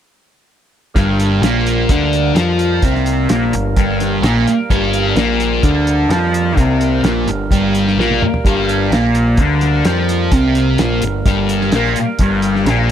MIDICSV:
0, 0, Header, 1, 7, 480
1, 0, Start_track
1, 0, Key_signature, -2, "minor"
1, 0, Tempo, 468750
1, 979, Time_signature, 4, 2, 24, 8
1, 13225, End_track
2, 0, Start_track
2, 0, Title_t, "Tonewheel organ"
2, 0, Program_c, 0, 16
2, 964, Note_on_c, 0, 55, 59
2, 968, Note_on_c, 0, 58, 59
2, 974, Note_on_c, 0, 70, 68
2, 13225, Note_off_c, 0, 55, 0
2, 13225, Note_off_c, 0, 58, 0
2, 13225, Note_off_c, 0, 70, 0
2, 13225, End_track
3, 0, Start_track
3, 0, Title_t, "Distorted electric guitar"
3, 0, Program_c, 1, 30
3, 977, Note_on_c, 1, 43, 87
3, 991, Note_on_c, 1, 55, 101
3, 1450, Note_off_c, 1, 43, 0
3, 1456, Note_on_c, 1, 46, 83
3, 1457, Note_off_c, 1, 55, 0
3, 1470, Note_on_c, 1, 58, 106
3, 1929, Note_off_c, 1, 46, 0
3, 1936, Note_off_c, 1, 58, 0
3, 1942, Note_on_c, 1, 50, 77
3, 1951, Note_on_c, 1, 62, 98
3, 2406, Note_off_c, 1, 50, 0
3, 2410, Note_on_c, 1, 53, 82
3, 2416, Note_off_c, 1, 62, 0
3, 2420, Note_on_c, 1, 65, 111
3, 2886, Note_off_c, 1, 53, 0
3, 2891, Note_off_c, 1, 65, 0
3, 2913, Note_on_c, 1, 48, 92
3, 2917, Note_on_c, 1, 60, 99
3, 3377, Note_off_c, 1, 48, 0
3, 3379, Note_off_c, 1, 60, 0
3, 3381, Note_on_c, 1, 46, 93
3, 3394, Note_on_c, 1, 58, 92
3, 3611, Note_off_c, 1, 46, 0
3, 3616, Note_on_c, 1, 43, 74
3, 3617, Note_off_c, 1, 58, 0
3, 3808, Note_off_c, 1, 43, 0
3, 3860, Note_on_c, 1, 43, 91
3, 3869, Note_on_c, 1, 55, 113
3, 4330, Note_off_c, 1, 43, 0
3, 4333, Note_on_c, 1, 46, 93
3, 4334, Note_off_c, 1, 55, 0
3, 4344, Note_on_c, 1, 58, 109
3, 4567, Note_off_c, 1, 46, 0
3, 4572, Note_off_c, 1, 58, 0
3, 4816, Note_on_c, 1, 43, 100
3, 4823, Note_on_c, 1, 55, 107
3, 5286, Note_on_c, 1, 46, 94
3, 5287, Note_off_c, 1, 43, 0
3, 5291, Note_off_c, 1, 55, 0
3, 5298, Note_on_c, 1, 58, 105
3, 5763, Note_off_c, 1, 46, 0
3, 5768, Note_off_c, 1, 58, 0
3, 5775, Note_on_c, 1, 50, 85
3, 5779, Note_on_c, 1, 62, 94
3, 6247, Note_off_c, 1, 50, 0
3, 6249, Note_off_c, 1, 62, 0
3, 6252, Note_on_c, 1, 53, 89
3, 6255, Note_on_c, 1, 65, 105
3, 6737, Note_off_c, 1, 53, 0
3, 6737, Note_on_c, 1, 48, 94
3, 6749, Note_off_c, 1, 65, 0
3, 6749, Note_on_c, 1, 60, 100
3, 7208, Note_off_c, 1, 48, 0
3, 7214, Note_off_c, 1, 60, 0
3, 7216, Note_on_c, 1, 46, 83
3, 7226, Note_on_c, 1, 58, 105
3, 7448, Note_off_c, 1, 46, 0
3, 7453, Note_off_c, 1, 58, 0
3, 7455, Note_on_c, 1, 43, 68
3, 7646, Note_off_c, 1, 43, 0
3, 7696, Note_on_c, 1, 43, 91
3, 7702, Note_on_c, 1, 55, 96
3, 8167, Note_off_c, 1, 43, 0
3, 8170, Note_off_c, 1, 55, 0
3, 8179, Note_on_c, 1, 46, 83
3, 8186, Note_on_c, 1, 58, 92
3, 8409, Note_off_c, 1, 46, 0
3, 8413, Note_off_c, 1, 58, 0
3, 8665, Note_on_c, 1, 43, 83
3, 8667, Note_on_c, 1, 55, 107
3, 9132, Note_off_c, 1, 43, 0
3, 9134, Note_off_c, 1, 55, 0
3, 9138, Note_on_c, 1, 46, 96
3, 9146, Note_on_c, 1, 58, 96
3, 9609, Note_off_c, 1, 46, 0
3, 9614, Note_off_c, 1, 58, 0
3, 9623, Note_on_c, 1, 50, 77
3, 9635, Note_on_c, 1, 62, 101
3, 10092, Note_off_c, 1, 50, 0
3, 10098, Note_off_c, 1, 62, 0
3, 10101, Note_on_c, 1, 53, 94
3, 10106, Note_on_c, 1, 65, 97
3, 10571, Note_off_c, 1, 53, 0
3, 10574, Note_off_c, 1, 65, 0
3, 10579, Note_on_c, 1, 48, 94
3, 10585, Note_on_c, 1, 60, 110
3, 11051, Note_off_c, 1, 48, 0
3, 11054, Note_off_c, 1, 60, 0
3, 11058, Note_on_c, 1, 46, 105
3, 11070, Note_on_c, 1, 58, 102
3, 11290, Note_off_c, 1, 46, 0
3, 11296, Note_off_c, 1, 58, 0
3, 11303, Note_on_c, 1, 43, 77
3, 11492, Note_off_c, 1, 43, 0
3, 11532, Note_on_c, 1, 43, 82
3, 11542, Note_on_c, 1, 55, 98
3, 12008, Note_off_c, 1, 43, 0
3, 12013, Note_off_c, 1, 55, 0
3, 12028, Note_on_c, 1, 46, 96
3, 12034, Note_on_c, 1, 58, 115
3, 12256, Note_off_c, 1, 46, 0
3, 12259, Note_off_c, 1, 58, 0
3, 12496, Note_on_c, 1, 43, 94
3, 12508, Note_on_c, 1, 55, 100
3, 12964, Note_on_c, 1, 46, 91
3, 12971, Note_off_c, 1, 43, 0
3, 12975, Note_on_c, 1, 58, 98
3, 12977, Note_off_c, 1, 55, 0
3, 13225, Note_off_c, 1, 46, 0
3, 13225, Note_off_c, 1, 58, 0
3, 13225, End_track
4, 0, Start_track
4, 0, Title_t, "Picked electric bass"
4, 0, Program_c, 2, 34
4, 975, Note_on_c, 2, 31, 88
4, 1423, Note_off_c, 2, 31, 0
4, 1444, Note_on_c, 2, 34, 83
4, 1896, Note_off_c, 2, 34, 0
4, 1938, Note_on_c, 2, 38, 99
4, 2384, Note_off_c, 2, 38, 0
4, 2398, Note_on_c, 2, 41, 89
4, 2852, Note_off_c, 2, 41, 0
4, 2888, Note_on_c, 2, 36, 85
4, 3338, Note_off_c, 2, 36, 0
4, 3383, Note_on_c, 2, 34, 83
4, 3603, Note_off_c, 2, 34, 0
4, 3619, Note_on_c, 2, 31, 81
4, 3840, Note_off_c, 2, 31, 0
4, 3849, Note_on_c, 2, 31, 99
4, 4298, Note_off_c, 2, 31, 0
4, 4324, Note_on_c, 2, 34, 98
4, 4552, Note_off_c, 2, 34, 0
4, 4812, Note_on_c, 2, 31, 95
4, 5259, Note_off_c, 2, 31, 0
4, 5278, Note_on_c, 2, 34, 98
4, 5731, Note_off_c, 2, 34, 0
4, 5767, Note_on_c, 2, 38, 98
4, 6216, Note_off_c, 2, 38, 0
4, 6238, Note_on_c, 2, 41, 96
4, 6692, Note_off_c, 2, 41, 0
4, 6730, Note_on_c, 2, 36, 96
4, 7178, Note_off_c, 2, 36, 0
4, 7203, Note_on_c, 2, 34, 95
4, 7428, Note_off_c, 2, 34, 0
4, 7434, Note_on_c, 2, 31, 75
4, 7666, Note_off_c, 2, 31, 0
4, 7682, Note_on_c, 2, 31, 90
4, 8134, Note_off_c, 2, 31, 0
4, 8162, Note_on_c, 2, 34, 95
4, 8391, Note_off_c, 2, 34, 0
4, 8643, Note_on_c, 2, 31, 88
4, 9095, Note_off_c, 2, 31, 0
4, 9120, Note_on_c, 2, 34, 89
4, 9573, Note_off_c, 2, 34, 0
4, 9602, Note_on_c, 2, 38, 90
4, 10055, Note_off_c, 2, 38, 0
4, 10089, Note_on_c, 2, 41, 85
4, 10539, Note_off_c, 2, 41, 0
4, 10563, Note_on_c, 2, 36, 89
4, 11016, Note_off_c, 2, 36, 0
4, 11052, Note_on_c, 2, 34, 90
4, 11264, Note_off_c, 2, 34, 0
4, 11270, Note_on_c, 2, 31, 76
4, 11506, Note_off_c, 2, 31, 0
4, 11524, Note_on_c, 2, 31, 94
4, 11977, Note_off_c, 2, 31, 0
4, 11999, Note_on_c, 2, 34, 86
4, 12228, Note_off_c, 2, 34, 0
4, 12481, Note_on_c, 2, 31, 91
4, 12936, Note_off_c, 2, 31, 0
4, 12960, Note_on_c, 2, 34, 98
4, 13225, Note_off_c, 2, 34, 0
4, 13225, End_track
5, 0, Start_track
5, 0, Title_t, "Muted distorted electric guitar strokes"
5, 4583, Note_on_c, 9, 29, 61
5, 4686, Note_off_c, 9, 29, 0
5, 8416, Note_on_c, 9, 29, 55
5, 8519, Note_off_c, 9, 29, 0
5, 12262, Note_on_c, 9, 29, 57
5, 12365, Note_off_c, 9, 29, 0
5, 13225, End_track
6, 0, Start_track
6, 0, Title_t, "Muted picked electric bass strokes"
6, 4560, Note_on_c, 9, 29, 40
6, 4662, Note_off_c, 9, 29, 0
6, 8414, Note_on_c, 9, 29, 39
6, 8517, Note_off_c, 9, 29, 0
6, 12234, Note_on_c, 9, 29, 42
6, 12336, Note_off_c, 9, 29, 0
6, 13225, End_track
7, 0, Start_track
7, 0, Title_t, "Drums"
7, 981, Note_on_c, 9, 36, 109
7, 984, Note_on_c, 9, 42, 88
7, 1083, Note_off_c, 9, 36, 0
7, 1086, Note_off_c, 9, 42, 0
7, 1224, Note_on_c, 9, 42, 72
7, 1326, Note_off_c, 9, 42, 0
7, 1465, Note_on_c, 9, 42, 94
7, 1473, Note_on_c, 9, 38, 97
7, 1567, Note_off_c, 9, 42, 0
7, 1575, Note_off_c, 9, 38, 0
7, 1705, Note_on_c, 9, 42, 78
7, 1807, Note_off_c, 9, 42, 0
7, 1936, Note_on_c, 9, 42, 103
7, 1939, Note_on_c, 9, 36, 104
7, 2039, Note_off_c, 9, 42, 0
7, 2041, Note_off_c, 9, 36, 0
7, 2180, Note_on_c, 9, 42, 71
7, 2282, Note_off_c, 9, 42, 0
7, 2415, Note_on_c, 9, 42, 90
7, 2423, Note_on_c, 9, 38, 109
7, 2517, Note_off_c, 9, 42, 0
7, 2525, Note_off_c, 9, 38, 0
7, 2652, Note_on_c, 9, 42, 71
7, 2755, Note_off_c, 9, 42, 0
7, 2892, Note_on_c, 9, 42, 91
7, 2894, Note_on_c, 9, 36, 106
7, 2995, Note_off_c, 9, 42, 0
7, 2997, Note_off_c, 9, 36, 0
7, 3021, Note_on_c, 9, 38, 33
7, 3123, Note_off_c, 9, 38, 0
7, 3133, Note_on_c, 9, 42, 75
7, 3235, Note_off_c, 9, 42, 0
7, 3371, Note_on_c, 9, 42, 95
7, 3379, Note_on_c, 9, 38, 105
7, 3473, Note_off_c, 9, 42, 0
7, 3481, Note_off_c, 9, 38, 0
7, 3616, Note_on_c, 9, 42, 68
7, 3719, Note_off_c, 9, 42, 0
7, 3855, Note_on_c, 9, 42, 93
7, 3856, Note_on_c, 9, 36, 108
7, 3958, Note_off_c, 9, 36, 0
7, 3958, Note_off_c, 9, 42, 0
7, 4100, Note_on_c, 9, 42, 71
7, 4108, Note_on_c, 9, 38, 35
7, 4202, Note_off_c, 9, 42, 0
7, 4210, Note_off_c, 9, 38, 0
7, 4336, Note_on_c, 9, 42, 88
7, 4344, Note_on_c, 9, 38, 100
7, 4438, Note_off_c, 9, 42, 0
7, 4446, Note_off_c, 9, 38, 0
7, 4468, Note_on_c, 9, 38, 35
7, 4570, Note_off_c, 9, 38, 0
7, 4582, Note_on_c, 9, 42, 63
7, 4684, Note_off_c, 9, 42, 0
7, 4814, Note_on_c, 9, 36, 95
7, 4818, Note_on_c, 9, 42, 87
7, 4916, Note_off_c, 9, 36, 0
7, 4921, Note_off_c, 9, 42, 0
7, 5053, Note_on_c, 9, 42, 68
7, 5155, Note_off_c, 9, 42, 0
7, 5288, Note_on_c, 9, 42, 83
7, 5296, Note_on_c, 9, 38, 99
7, 5390, Note_off_c, 9, 42, 0
7, 5398, Note_off_c, 9, 38, 0
7, 5530, Note_on_c, 9, 42, 70
7, 5632, Note_off_c, 9, 42, 0
7, 5768, Note_on_c, 9, 36, 109
7, 5768, Note_on_c, 9, 42, 100
7, 5870, Note_off_c, 9, 36, 0
7, 5870, Note_off_c, 9, 42, 0
7, 6012, Note_on_c, 9, 42, 74
7, 6115, Note_off_c, 9, 42, 0
7, 6251, Note_on_c, 9, 42, 92
7, 6260, Note_on_c, 9, 38, 117
7, 6354, Note_off_c, 9, 42, 0
7, 6362, Note_off_c, 9, 38, 0
7, 6494, Note_on_c, 9, 42, 68
7, 6597, Note_off_c, 9, 42, 0
7, 6729, Note_on_c, 9, 36, 97
7, 6732, Note_on_c, 9, 42, 95
7, 6831, Note_off_c, 9, 36, 0
7, 6834, Note_off_c, 9, 42, 0
7, 6971, Note_on_c, 9, 42, 73
7, 7074, Note_off_c, 9, 42, 0
7, 7208, Note_on_c, 9, 42, 92
7, 7216, Note_on_c, 9, 38, 110
7, 7310, Note_off_c, 9, 42, 0
7, 7318, Note_off_c, 9, 38, 0
7, 7450, Note_on_c, 9, 42, 71
7, 7553, Note_off_c, 9, 42, 0
7, 7688, Note_on_c, 9, 36, 101
7, 7696, Note_on_c, 9, 42, 101
7, 7790, Note_off_c, 9, 36, 0
7, 7798, Note_off_c, 9, 42, 0
7, 7933, Note_on_c, 9, 42, 62
7, 8035, Note_off_c, 9, 42, 0
7, 8064, Note_on_c, 9, 38, 32
7, 8167, Note_off_c, 9, 38, 0
7, 8192, Note_on_c, 9, 38, 62
7, 8294, Note_off_c, 9, 38, 0
7, 8302, Note_on_c, 9, 48, 67
7, 8404, Note_off_c, 9, 48, 0
7, 8422, Note_on_c, 9, 45, 91
7, 8524, Note_off_c, 9, 45, 0
7, 8539, Note_on_c, 9, 43, 84
7, 8642, Note_off_c, 9, 43, 0
7, 8650, Note_on_c, 9, 36, 102
7, 8660, Note_on_c, 9, 42, 77
7, 8753, Note_off_c, 9, 36, 0
7, 8762, Note_off_c, 9, 42, 0
7, 8900, Note_on_c, 9, 42, 69
7, 9002, Note_off_c, 9, 42, 0
7, 9136, Note_on_c, 9, 42, 77
7, 9144, Note_on_c, 9, 38, 96
7, 9238, Note_off_c, 9, 42, 0
7, 9247, Note_off_c, 9, 38, 0
7, 9366, Note_on_c, 9, 42, 71
7, 9469, Note_off_c, 9, 42, 0
7, 9599, Note_on_c, 9, 42, 98
7, 9604, Note_on_c, 9, 36, 108
7, 9701, Note_off_c, 9, 42, 0
7, 9707, Note_off_c, 9, 36, 0
7, 9842, Note_on_c, 9, 42, 70
7, 9850, Note_on_c, 9, 38, 35
7, 9944, Note_off_c, 9, 42, 0
7, 9953, Note_off_c, 9, 38, 0
7, 10083, Note_on_c, 9, 42, 94
7, 10091, Note_on_c, 9, 38, 101
7, 10185, Note_off_c, 9, 42, 0
7, 10194, Note_off_c, 9, 38, 0
7, 10331, Note_on_c, 9, 42, 69
7, 10433, Note_off_c, 9, 42, 0
7, 10563, Note_on_c, 9, 42, 95
7, 10566, Note_on_c, 9, 36, 105
7, 10666, Note_off_c, 9, 42, 0
7, 10668, Note_off_c, 9, 36, 0
7, 10804, Note_on_c, 9, 42, 73
7, 10906, Note_off_c, 9, 42, 0
7, 11042, Note_on_c, 9, 42, 92
7, 11050, Note_on_c, 9, 38, 109
7, 11145, Note_off_c, 9, 42, 0
7, 11153, Note_off_c, 9, 38, 0
7, 11282, Note_on_c, 9, 42, 69
7, 11384, Note_off_c, 9, 42, 0
7, 11526, Note_on_c, 9, 42, 93
7, 11527, Note_on_c, 9, 36, 105
7, 11629, Note_off_c, 9, 36, 0
7, 11629, Note_off_c, 9, 42, 0
7, 11767, Note_on_c, 9, 42, 65
7, 11869, Note_off_c, 9, 42, 0
7, 11890, Note_on_c, 9, 38, 32
7, 11992, Note_off_c, 9, 38, 0
7, 11999, Note_on_c, 9, 42, 84
7, 12007, Note_on_c, 9, 38, 115
7, 12102, Note_off_c, 9, 42, 0
7, 12110, Note_off_c, 9, 38, 0
7, 12131, Note_on_c, 9, 38, 36
7, 12233, Note_off_c, 9, 38, 0
7, 12246, Note_on_c, 9, 42, 69
7, 12348, Note_off_c, 9, 42, 0
7, 12479, Note_on_c, 9, 42, 84
7, 12486, Note_on_c, 9, 36, 96
7, 12581, Note_off_c, 9, 42, 0
7, 12588, Note_off_c, 9, 36, 0
7, 12722, Note_on_c, 9, 42, 74
7, 12824, Note_off_c, 9, 42, 0
7, 12856, Note_on_c, 9, 38, 34
7, 12959, Note_off_c, 9, 38, 0
7, 12968, Note_on_c, 9, 42, 86
7, 12976, Note_on_c, 9, 38, 114
7, 13070, Note_off_c, 9, 42, 0
7, 13079, Note_off_c, 9, 38, 0
7, 13225, End_track
0, 0, End_of_file